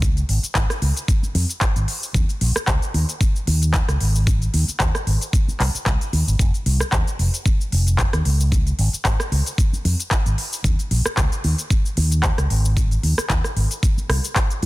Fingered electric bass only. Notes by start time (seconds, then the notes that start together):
Already playing: C#2
0.29 G#1
0.43 muted fingered electric bass stroke
0.55 G#1
0.82 C#2
1.23 muted fingered electric bass stroke
1.35 F2
1.76 G#1
2.15 D#2
2.41 A#1
2.68 C#2
2.94 D#2
3.48 D#2
3.89 C#2
4.01 G#1
4.54 D#2
4.68 muted fingered electric bass stroke
4.80 D#2
5.07 G#1
5.48 muted fingered electric bass stroke
5.60 C2
5.75 muted fingered electric bass stroke
5.86 C2
6.13 D#2
6.27 G#1
6.39 F1
6.66 C2
6.92 D#2
7.19 F1
7.73 F1
8.14 D#2
8.26 C#2
8.79 G#1
8.93 muted fingered electric bass stroke
9.05 G#1
9.32 C#2
9.73 muted fingered electric bass stroke
9.85 F2
10.26 G#1
10.64 D#2
10.91 A#1
11.06 muted fingered electric bass stroke
11.18 C#2
11.44 D#2
11.97 D#2
12.38 C#2
12.50 G#1
13.03 D#2
13.18 muted fingered electric bass stroke
13.30 D#2
13.56 G#1
13.97 muted fingered electric bass stroke
14.09 C2
14.63 G#2